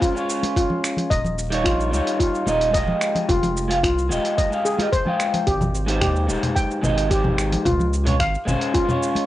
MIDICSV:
0, 0, Header, 1, 5, 480
1, 0, Start_track
1, 0, Key_signature, -4, "major"
1, 0, Tempo, 545455
1, 975, Time_signature, 4, 2, 24, 8
1, 8149, End_track
2, 0, Start_track
2, 0, Title_t, "Steel pan"
2, 0, Program_c, 0, 114
2, 12, Note_on_c, 0, 65, 76
2, 230, Note_off_c, 0, 65, 0
2, 497, Note_on_c, 0, 65, 72
2, 628, Note_off_c, 0, 65, 0
2, 970, Note_on_c, 0, 75, 83
2, 1189, Note_off_c, 0, 75, 0
2, 1445, Note_on_c, 0, 65, 73
2, 1667, Note_off_c, 0, 65, 0
2, 1932, Note_on_c, 0, 65, 76
2, 2066, Note_off_c, 0, 65, 0
2, 2409, Note_on_c, 0, 75, 74
2, 2629, Note_off_c, 0, 75, 0
2, 2893, Note_on_c, 0, 65, 81
2, 3111, Note_off_c, 0, 65, 0
2, 3374, Note_on_c, 0, 65, 72
2, 3507, Note_off_c, 0, 65, 0
2, 3854, Note_on_c, 0, 75, 70
2, 4071, Note_off_c, 0, 75, 0
2, 4092, Note_on_c, 0, 68, 71
2, 4322, Note_off_c, 0, 68, 0
2, 4332, Note_on_c, 0, 72, 76
2, 4466, Note_off_c, 0, 72, 0
2, 4811, Note_on_c, 0, 67, 78
2, 5030, Note_off_c, 0, 67, 0
2, 5289, Note_on_c, 0, 67, 72
2, 5424, Note_off_c, 0, 67, 0
2, 5769, Note_on_c, 0, 79, 75
2, 5989, Note_off_c, 0, 79, 0
2, 6255, Note_on_c, 0, 67, 71
2, 6472, Note_off_c, 0, 67, 0
2, 6735, Note_on_c, 0, 65, 79
2, 6867, Note_off_c, 0, 65, 0
2, 7214, Note_on_c, 0, 77, 75
2, 7431, Note_off_c, 0, 77, 0
2, 7689, Note_on_c, 0, 65, 81
2, 7909, Note_off_c, 0, 65, 0
2, 8149, End_track
3, 0, Start_track
3, 0, Title_t, "Clean electric guitar"
3, 0, Program_c, 1, 27
3, 0, Note_on_c, 1, 56, 88
3, 0, Note_on_c, 1, 61, 85
3, 0, Note_on_c, 1, 65, 78
3, 0, Note_on_c, 1, 72, 98
3, 98, Note_off_c, 1, 56, 0
3, 107, Note_off_c, 1, 61, 0
3, 109, Note_on_c, 1, 56, 74
3, 112, Note_off_c, 1, 65, 0
3, 117, Note_off_c, 1, 72, 0
3, 129, Note_on_c, 1, 61, 67
3, 147, Note_on_c, 1, 65, 69
3, 165, Note_on_c, 1, 73, 82
3, 946, Note_off_c, 1, 56, 0
3, 956, Note_off_c, 1, 61, 0
3, 965, Note_off_c, 1, 65, 0
3, 974, Note_off_c, 1, 73, 0
3, 1323, Note_on_c, 1, 55, 89
3, 1335, Note_on_c, 1, 63, 80
3, 1344, Note_on_c, 1, 65, 81
3, 1355, Note_on_c, 1, 73, 100
3, 1659, Note_off_c, 1, 55, 0
3, 1665, Note_off_c, 1, 63, 0
3, 1670, Note_off_c, 1, 65, 0
3, 1676, Note_off_c, 1, 73, 0
3, 1679, Note_on_c, 1, 55, 82
3, 1689, Note_on_c, 1, 63, 75
3, 1702, Note_on_c, 1, 65, 71
3, 1709, Note_on_c, 1, 73, 88
3, 2139, Note_off_c, 1, 55, 0
3, 2144, Note_off_c, 1, 63, 0
3, 2150, Note_off_c, 1, 65, 0
3, 2154, Note_off_c, 1, 73, 0
3, 2162, Note_on_c, 1, 55, 80
3, 2173, Note_on_c, 1, 63, 71
3, 2183, Note_on_c, 1, 65, 75
3, 2191, Note_on_c, 1, 75, 91
3, 2380, Note_off_c, 1, 55, 0
3, 2384, Note_on_c, 1, 56, 83
3, 2386, Note_off_c, 1, 63, 0
3, 2391, Note_off_c, 1, 65, 0
3, 2395, Note_off_c, 1, 75, 0
3, 2402, Note_on_c, 1, 65, 77
3, 2422, Note_on_c, 1, 67, 75
3, 2444, Note_on_c, 1, 75, 95
3, 3213, Note_off_c, 1, 56, 0
3, 3222, Note_off_c, 1, 65, 0
3, 3232, Note_off_c, 1, 67, 0
3, 3239, Note_on_c, 1, 56, 74
3, 3243, Note_off_c, 1, 75, 0
3, 3251, Note_on_c, 1, 65, 71
3, 3259, Note_on_c, 1, 67, 73
3, 3268, Note_on_c, 1, 77, 88
3, 3313, Note_off_c, 1, 56, 0
3, 3319, Note_off_c, 1, 65, 0
3, 3323, Note_off_c, 1, 67, 0
3, 3328, Note_off_c, 1, 77, 0
3, 3602, Note_on_c, 1, 56, 84
3, 3611, Note_on_c, 1, 65, 82
3, 3618, Note_on_c, 1, 67, 77
3, 3628, Note_on_c, 1, 75, 94
3, 3942, Note_off_c, 1, 56, 0
3, 3947, Note_off_c, 1, 65, 0
3, 3950, Note_off_c, 1, 67, 0
3, 3955, Note_off_c, 1, 75, 0
3, 3964, Note_on_c, 1, 56, 77
3, 3975, Note_on_c, 1, 65, 66
3, 3983, Note_on_c, 1, 67, 64
3, 3993, Note_on_c, 1, 77, 76
3, 4186, Note_off_c, 1, 56, 0
3, 4192, Note_off_c, 1, 65, 0
3, 4196, Note_off_c, 1, 67, 0
3, 4201, Note_off_c, 1, 77, 0
3, 4206, Note_on_c, 1, 56, 78
3, 4216, Note_on_c, 1, 65, 73
3, 4226, Note_on_c, 1, 67, 71
3, 4237, Note_on_c, 1, 75, 83
3, 4277, Note_off_c, 1, 56, 0
3, 4281, Note_off_c, 1, 65, 0
3, 4287, Note_off_c, 1, 67, 0
3, 4292, Note_off_c, 1, 75, 0
3, 4445, Note_on_c, 1, 56, 71
3, 4454, Note_on_c, 1, 65, 68
3, 4464, Note_on_c, 1, 79, 70
3, 4473, Note_on_c, 1, 77, 81
3, 4794, Note_off_c, 1, 56, 0
3, 4799, Note_off_c, 1, 65, 0
3, 4804, Note_off_c, 1, 79, 0
3, 4808, Note_off_c, 1, 77, 0
3, 5160, Note_on_c, 1, 56, 92
3, 5171, Note_on_c, 1, 63, 84
3, 5178, Note_on_c, 1, 67, 77
3, 5188, Note_on_c, 1, 72, 102
3, 5498, Note_off_c, 1, 56, 0
3, 5503, Note_off_c, 1, 63, 0
3, 5507, Note_off_c, 1, 67, 0
3, 5512, Note_off_c, 1, 72, 0
3, 5516, Note_on_c, 1, 56, 82
3, 5526, Note_on_c, 1, 63, 74
3, 5534, Note_on_c, 1, 67, 75
3, 5547, Note_on_c, 1, 72, 85
3, 5977, Note_off_c, 1, 56, 0
3, 5982, Note_off_c, 1, 63, 0
3, 5987, Note_off_c, 1, 67, 0
3, 5993, Note_off_c, 1, 72, 0
3, 5995, Note_on_c, 1, 56, 85
3, 6007, Note_on_c, 1, 63, 76
3, 6014, Note_on_c, 1, 67, 75
3, 6024, Note_on_c, 1, 75, 90
3, 6217, Note_off_c, 1, 56, 0
3, 6223, Note_off_c, 1, 63, 0
3, 6226, Note_off_c, 1, 67, 0
3, 6231, Note_off_c, 1, 75, 0
3, 6236, Note_on_c, 1, 56, 84
3, 6249, Note_on_c, 1, 63, 78
3, 6255, Note_on_c, 1, 67, 77
3, 6266, Note_on_c, 1, 72, 92
3, 6711, Note_off_c, 1, 56, 0
3, 6718, Note_off_c, 1, 63, 0
3, 6721, Note_off_c, 1, 67, 0
3, 6727, Note_off_c, 1, 72, 0
3, 7086, Note_on_c, 1, 56, 81
3, 7092, Note_on_c, 1, 61, 71
3, 7104, Note_on_c, 1, 65, 75
3, 7113, Note_on_c, 1, 73, 85
3, 7156, Note_off_c, 1, 56, 0
3, 7160, Note_off_c, 1, 61, 0
3, 7165, Note_off_c, 1, 65, 0
3, 7170, Note_off_c, 1, 73, 0
3, 7438, Note_on_c, 1, 56, 91
3, 7447, Note_on_c, 1, 61, 88
3, 7458, Note_on_c, 1, 65, 82
3, 7467, Note_on_c, 1, 72, 101
3, 7774, Note_off_c, 1, 56, 0
3, 7784, Note_off_c, 1, 61, 0
3, 7784, Note_on_c, 1, 56, 78
3, 7790, Note_off_c, 1, 65, 0
3, 7795, Note_off_c, 1, 72, 0
3, 7804, Note_on_c, 1, 61, 71
3, 7824, Note_on_c, 1, 65, 70
3, 7841, Note_on_c, 1, 73, 86
3, 8149, Note_off_c, 1, 56, 0
3, 8149, Note_off_c, 1, 61, 0
3, 8149, Note_off_c, 1, 65, 0
3, 8149, Note_off_c, 1, 73, 0
3, 8149, End_track
4, 0, Start_track
4, 0, Title_t, "Analog synth bass"
4, 0, Program_c, 2, 38
4, 974, Note_on_c, 2, 27, 88
4, 1456, Note_on_c, 2, 34, 100
4, 1470, Note_off_c, 2, 27, 0
4, 1694, Note_on_c, 2, 37, 80
4, 1707, Note_off_c, 2, 34, 0
4, 1770, Note_off_c, 2, 37, 0
4, 2170, Note_on_c, 2, 27, 88
4, 2580, Note_off_c, 2, 27, 0
4, 2897, Note_on_c, 2, 29, 89
4, 3374, Note_on_c, 2, 36, 91
4, 3387, Note_off_c, 2, 29, 0
4, 3612, Note_on_c, 2, 27, 70
4, 3625, Note_off_c, 2, 36, 0
4, 3689, Note_off_c, 2, 27, 0
4, 4816, Note_on_c, 2, 32, 101
4, 5296, Note_on_c, 2, 39, 94
4, 5310, Note_off_c, 2, 32, 0
4, 5531, Note_on_c, 2, 27, 77
4, 5544, Note_off_c, 2, 39, 0
4, 5608, Note_off_c, 2, 27, 0
4, 6012, Note_on_c, 2, 32, 87
4, 6661, Note_off_c, 2, 32, 0
4, 6735, Note_on_c, 2, 37, 102
4, 7216, Note_on_c, 2, 32, 98
4, 7229, Note_off_c, 2, 37, 0
4, 7364, Note_off_c, 2, 32, 0
4, 7455, Note_on_c, 2, 32, 76
4, 7530, Note_off_c, 2, 32, 0
4, 8149, End_track
5, 0, Start_track
5, 0, Title_t, "Drums"
5, 17, Note_on_c, 9, 36, 105
5, 20, Note_on_c, 9, 42, 56
5, 25, Note_on_c, 9, 82, 43
5, 105, Note_off_c, 9, 36, 0
5, 108, Note_off_c, 9, 42, 0
5, 113, Note_off_c, 9, 82, 0
5, 146, Note_on_c, 9, 82, 34
5, 234, Note_off_c, 9, 82, 0
5, 262, Note_on_c, 9, 82, 78
5, 350, Note_off_c, 9, 82, 0
5, 378, Note_on_c, 9, 63, 89
5, 382, Note_on_c, 9, 42, 42
5, 387, Note_on_c, 9, 82, 33
5, 466, Note_off_c, 9, 63, 0
5, 470, Note_off_c, 9, 42, 0
5, 475, Note_off_c, 9, 82, 0
5, 497, Note_on_c, 9, 36, 106
5, 502, Note_on_c, 9, 42, 51
5, 506, Note_on_c, 9, 82, 43
5, 585, Note_off_c, 9, 36, 0
5, 590, Note_off_c, 9, 42, 0
5, 594, Note_off_c, 9, 82, 0
5, 616, Note_on_c, 9, 64, 85
5, 704, Note_off_c, 9, 64, 0
5, 740, Note_on_c, 9, 26, 85
5, 744, Note_on_c, 9, 82, 80
5, 828, Note_off_c, 9, 26, 0
5, 832, Note_off_c, 9, 82, 0
5, 852, Note_on_c, 9, 64, 72
5, 864, Note_on_c, 9, 42, 40
5, 868, Note_on_c, 9, 82, 31
5, 940, Note_off_c, 9, 64, 0
5, 952, Note_off_c, 9, 42, 0
5, 956, Note_off_c, 9, 82, 0
5, 976, Note_on_c, 9, 36, 105
5, 979, Note_on_c, 9, 42, 54
5, 983, Note_on_c, 9, 82, 42
5, 1064, Note_off_c, 9, 36, 0
5, 1067, Note_off_c, 9, 42, 0
5, 1071, Note_off_c, 9, 82, 0
5, 1096, Note_on_c, 9, 64, 83
5, 1105, Note_on_c, 9, 82, 33
5, 1184, Note_off_c, 9, 64, 0
5, 1193, Note_off_c, 9, 82, 0
5, 1219, Note_on_c, 9, 82, 76
5, 1307, Note_off_c, 9, 82, 0
5, 1339, Note_on_c, 9, 42, 45
5, 1343, Note_on_c, 9, 82, 37
5, 1427, Note_off_c, 9, 42, 0
5, 1431, Note_off_c, 9, 82, 0
5, 1456, Note_on_c, 9, 36, 99
5, 1458, Note_on_c, 9, 26, 72
5, 1458, Note_on_c, 9, 42, 50
5, 1463, Note_on_c, 9, 82, 42
5, 1544, Note_off_c, 9, 36, 0
5, 1546, Note_off_c, 9, 26, 0
5, 1546, Note_off_c, 9, 42, 0
5, 1551, Note_off_c, 9, 82, 0
5, 1587, Note_on_c, 9, 82, 32
5, 1675, Note_off_c, 9, 82, 0
5, 1691, Note_on_c, 9, 63, 72
5, 1703, Note_on_c, 9, 82, 77
5, 1779, Note_off_c, 9, 63, 0
5, 1791, Note_off_c, 9, 82, 0
5, 1822, Note_on_c, 9, 42, 42
5, 1827, Note_on_c, 9, 82, 35
5, 1910, Note_off_c, 9, 42, 0
5, 1915, Note_off_c, 9, 82, 0
5, 1935, Note_on_c, 9, 36, 104
5, 1938, Note_on_c, 9, 42, 50
5, 1942, Note_on_c, 9, 82, 44
5, 2023, Note_off_c, 9, 36, 0
5, 2026, Note_off_c, 9, 42, 0
5, 2030, Note_off_c, 9, 82, 0
5, 2066, Note_on_c, 9, 82, 31
5, 2154, Note_off_c, 9, 82, 0
5, 2171, Note_on_c, 9, 63, 100
5, 2178, Note_on_c, 9, 82, 79
5, 2259, Note_off_c, 9, 63, 0
5, 2266, Note_off_c, 9, 82, 0
5, 2299, Note_on_c, 9, 42, 39
5, 2303, Note_on_c, 9, 82, 31
5, 2387, Note_off_c, 9, 42, 0
5, 2391, Note_off_c, 9, 82, 0
5, 2414, Note_on_c, 9, 42, 53
5, 2416, Note_on_c, 9, 36, 104
5, 2419, Note_on_c, 9, 82, 44
5, 2502, Note_off_c, 9, 42, 0
5, 2504, Note_off_c, 9, 36, 0
5, 2507, Note_off_c, 9, 82, 0
5, 2531, Note_on_c, 9, 64, 88
5, 2619, Note_off_c, 9, 64, 0
5, 2651, Note_on_c, 9, 26, 82
5, 2655, Note_on_c, 9, 82, 83
5, 2739, Note_off_c, 9, 26, 0
5, 2743, Note_off_c, 9, 82, 0
5, 2774, Note_on_c, 9, 64, 78
5, 2778, Note_on_c, 9, 42, 41
5, 2782, Note_on_c, 9, 82, 31
5, 2862, Note_off_c, 9, 64, 0
5, 2866, Note_off_c, 9, 42, 0
5, 2870, Note_off_c, 9, 82, 0
5, 2895, Note_on_c, 9, 36, 110
5, 2896, Note_on_c, 9, 42, 52
5, 2901, Note_on_c, 9, 82, 42
5, 2983, Note_off_c, 9, 36, 0
5, 2984, Note_off_c, 9, 42, 0
5, 2989, Note_off_c, 9, 82, 0
5, 3016, Note_on_c, 9, 64, 92
5, 3019, Note_on_c, 9, 42, 28
5, 3024, Note_on_c, 9, 82, 30
5, 3104, Note_off_c, 9, 64, 0
5, 3107, Note_off_c, 9, 42, 0
5, 3112, Note_off_c, 9, 82, 0
5, 3142, Note_on_c, 9, 82, 74
5, 3230, Note_off_c, 9, 82, 0
5, 3262, Note_on_c, 9, 42, 45
5, 3267, Note_on_c, 9, 82, 35
5, 3350, Note_off_c, 9, 42, 0
5, 3355, Note_off_c, 9, 82, 0
5, 3376, Note_on_c, 9, 36, 100
5, 3380, Note_on_c, 9, 26, 73
5, 3380, Note_on_c, 9, 42, 48
5, 3384, Note_on_c, 9, 82, 42
5, 3464, Note_off_c, 9, 36, 0
5, 3468, Note_off_c, 9, 26, 0
5, 3468, Note_off_c, 9, 42, 0
5, 3472, Note_off_c, 9, 82, 0
5, 3506, Note_on_c, 9, 82, 32
5, 3594, Note_off_c, 9, 82, 0
5, 3613, Note_on_c, 9, 63, 65
5, 3621, Note_on_c, 9, 82, 75
5, 3701, Note_off_c, 9, 63, 0
5, 3709, Note_off_c, 9, 82, 0
5, 3739, Note_on_c, 9, 42, 41
5, 3744, Note_on_c, 9, 82, 33
5, 3827, Note_off_c, 9, 42, 0
5, 3832, Note_off_c, 9, 82, 0
5, 3856, Note_on_c, 9, 36, 109
5, 3857, Note_on_c, 9, 42, 48
5, 3861, Note_on_c, 9, 82, 46
5, 3944, Note_off_c, 9, 36, 0
5, 3945, Note_off_c, 9, 42, 0
5, 3949, Note_off_c, 9, 82, 0
5, 3982, Note_on_c, 9, 82, 33
5, 4070, Note_off_c, 9, 82, 0
5, 4098, Note_on_c, 9, 82, 77
5, 4186, Note_off_c, 9, 82, 0
5, 4212, Note_on_c, 9, 63, 97
5, 4220, Note_on_c, 9, 42, 42
5, 4224, Note_on_c, 9, 82, 35
5, 4300, Note_off_c, 9, 63, 0
5, 4308, Note_off_c, 9, 42, 0
5, 4312, Note_off_c, 9, 82, 0
5, 4336, Note_on_c, 9, 36, 101
5, 4338, Note_on_c, 9, 42, 49
5, 4343, Note_on_c, 9, 82, 45
5, 4424, Note_off_c, 9, 36, 0
5, 4426, Note_off_c, 9, 42, 0
5, 4431, Note_off_c, 9, 82, 0
5, 4452, Note_on_c, 9, 64, 74
5, 4540, Note_off_c, 9, 64, 0
5, 4574, Note_on_c, 9, 26, 75
5, 4578, Note_on_c, 9, 82, 82
5, 4662, Note_off_c, 9, 26, 0
5, 4666, Note_off_c, 9, 82, 0
5, 4697, Note_on_c, 9, 64, 75
5, 4698, Note_on_c, 9, 42, 40
5, 4702, Note_on_c, 9, 82, 32
5, 4785, Note_off_c, 9, 64, 0
5, 4786, Note_off_c, 9, 42, 0
5, 4790, Note_off_c, 9, 82, 0
5, 4813, Note_on_c, 9, 42, 49
5, 4816, Note_on_c, 9, 36, 107
5, 4818, Note_on_c, 9, 82, 41
5, 4901, Note_off_c, 9, 42, 0
5, 4904, Note_off_c, 9, 36, 0
5, 4906, Note_off_c, 9, 82, 0
5, 4936, Note_on_c, 9, 64, 80
5, 4937, Note_off_c, 9, 64, 0
5, 4937, Note_on_c, 9, 64, 86
5, 4940, Note_on_c, 9, 82, 32
5, 5025, Note_off_c, 9, 64, 0
5, 5028, Note_off_c, 9, 82, 0
5, 5058, Note_on_c, 9, 82, 74
5, 5146, Note_off_c, 9, 82, 0
5, 5177, Note_on_c, 9, 42, 47
5, 5181, Note_on_c, 9, 82, 33
5, 5265, Note_off_c, 9, 42, 0
5, 5269, Note_off_c, 9, 82, 0
5, 5293, Note_on_c, 9, 26, 73
5, 5293, Note_on_c, 9, 42, 47
5, 5293, Note_on_c, 9, 64, 70
5, 5296, Note_on_c, 9, 36, 97
5, 5298, Note_on_c, 9, 82, 41
5, 5381, Note_off_c, 9, 26, 0
5, 5381, Note_off_c, 9, 42, 0
5, 5381, Note_off_c, 9, 64, 0
5, 5384, Note_off_c, 9, 36, 0
5, 5386, Note_off_c, 9, 82, 0
5, 5421, Note_on_c, 9, 82, 29
5, 5509, Note_off_c, 9, 82, 0
5, 5529, Note_on_c, 9, 63, 71
5, 5539, Note_on_c, 9, 82, 78
5, 5617, Note_off_c, 9, 63, 0
5, 5627, Note_off_c, 9, 82, 0
5, 5659, Note_on_c, 9, 42, 42
5, 5659, Note_on_c, 9, 64, 74
5, 5663, Note_on_c, 9, 82, 30
5, 5747, Note_off_c, 9, 42, 0
5, 5747, Note_off_c, 9, 64, 0
5, 5751, Note_off_c, 9, 82, 0
5, 5775, Note_on_c, 9, 36, 103
5, 5777, Note_on_c, 9, 42, 51
5, 5781, Note_on_c, 9, 82, 43
5, 5863, Note_off_c, 9, 36, 0
5, 5865, Note_off_c, 9, 42, 0
5, 5869, Note_off_c, 9, 82, 0
5, 5904, Note_on_c, 9, 82, 29
5, 5992, Note_off_c, 9, 82, 0
5, 6011, Note_on_c, 9, 63, 92
5, 6017, Note_on_c, 9, 64, 76
5, 6021, Note_on_c, 9, 82, 73
5, 6099, Note_off_c, 9, 63, 0
5, 6105, Note_off_c, 9, 64, 0
5, 6109, Note_off_c, 9, 82, 0
5, 6140, Note_on_c, 9, 42, 41
5, 6144, Note_on_c, 9, 82, 31
5, 6228, Note_off_c, 9, 42, 0
5, 6232, Note_off_c, 9, 82, 0
5, 6256, Note_on_c, 9, 36, 94
5, 6256, Note_on_c, 9, 42, 50
5, 6261, Note_on_c, 9, 82, 41
5, 6344, Note_off_c, 9, 36, 0
5, 6344, Note_off_c, 9, 42, 0
5, 6349, Note_off_c, 9, 82, 0
5, 6373, Note_on_c, 9, 64, 74
5, 6379, Note_off_c, 9, 64, 0
5, 6379, Note_on_c, 9, 64, 80
5, 6467, Note_off_c, 9, 64, 0
5, 6497, Note_on_c, 9, 26, 72
5, 6501, Note_on_c, 9, 82, 79
5, 6585, Note_off_c, 9, 26, 0
5, 6589, Note_off_c, 9, 82, 0
5, 6619, Note_on_c, 9, 64, 80
5, 6621, Note_on_c, 9, 42, 42
5, 6626, Note_on_c, 9, 82, 31
5, 6707, Note_off_c, 9, 64, 0
5, 6709, Note_off_c, 9, 42, 0
5, 6714, Note_off_c, 9, 82, 0
5, 6736, Note_on_c, 9, 36, 95
5, 6739, Note_on_c, 9, 42, 52
5, 6739, Note_on_c, 9, 64, 82
5, 6744, Note_on_c, 9, 82, 42
5, 6824, Note_off_c, 9, 36, 0
5, 6827, Note_off_c, 9, 42, 0
5, 6827, Note_off_c, 9, 64, 0
5, 6832, Note_off_c, 9, 82, 0
5, 6860, Note_on_c, 9, 64, 84
5, 6867, Note_on_c, 9, 82, 31
5, 6948, Note_off_c, 9, 64, 0
5, 6955, Note_off_c, 9, 82, 0
5, 6981, Note_on_c, 9, 82, 66
5, 7069, Note_off_c, 9, 82, 0
5, 7098, Note_on_c, 9, 42, 44
5, 7098, Note_on_c, 9, 64, 84
5, 7102, Note_on_c, 9, 82, 34
5, 7186, Note_off_c, 9, 42, 0
5, 7186, Note_off_c, 9, 64, 0
5, 7190, Note_off_c, 9, 82, 0
5, 7216, Note_on_c, 9, 26, 71
5, 7216, Note_on_c, 9, 36, 100
5, 7216, Note_on_c, 9, 42, 50
5, 7220, Note_on_c, 9, 82, 38
5, 7304, Note_off_c, 9, 26, 0
5, 7304, Note_off_c, 9, 36, 0
5, 7304, Note_off_c, 9, 42, 0
5, 7308, Note_off_c, 9, 82, 0
5, 7345, Note_on_c, 9, 82, 28
5, 7433, Note_off_c, 9, 82, 0
5, 7459, Note_on_c, 9, 63, 67
5, 7459, Note_on_c, 9, 64, 76
5, 7463, Note_on_c, 9, 82, 70
5, 7547, Note_off_c, 9, 63, 0
5, 7547, Note_off_c, 9, 64, 0
5, 7551, Note_off_c, 9, 82, 0
5, 7579, Note_on_c, 9, 42, 40
5, 7584, Note_on_c, 9, 82, 31
5, 7667, Note_off_c, 9, 42, 0
5, 7672, Note_off_c, 9, 82, 0
5, 7695, Note_on_c, 9, 42, 52
5, 7698, Note_on_c, 9, 36, 95
5, 7700, Note_on_c, 9, 82, 38
5, 7783, Note_off_c, 9, 42, 0
5, 7786, Note_off_c, 9, 36, 0
5, 7788, Note_off_c, 9, 82, 0
5, 7820, Note_on_c, 9, 64, 85
5, 7825, Note_on_c, 9, 82, 31
5, 7908, Note_off_c, 9, 64, 0
5, 7913, Note_off_c, 9, 82, 0
5, 7945, Note_on_c, 9, 82, 74
5, 8033, Note_off_c, 9, 82, 0
5, 8054, Note_on_c, 9, 63, 92
5, 8063, Note_on_c, 9, 42, 42
5, 8067, Note_on_c, 9, 82, 30
5, 8142, Note_off_c, 9, 63, 0
5, 8149, Note_off_c, 9, 42, 0
5, 8149, Note_off_c, 9, 82, 0
5, 8149, End_track
0, 0, End_of_file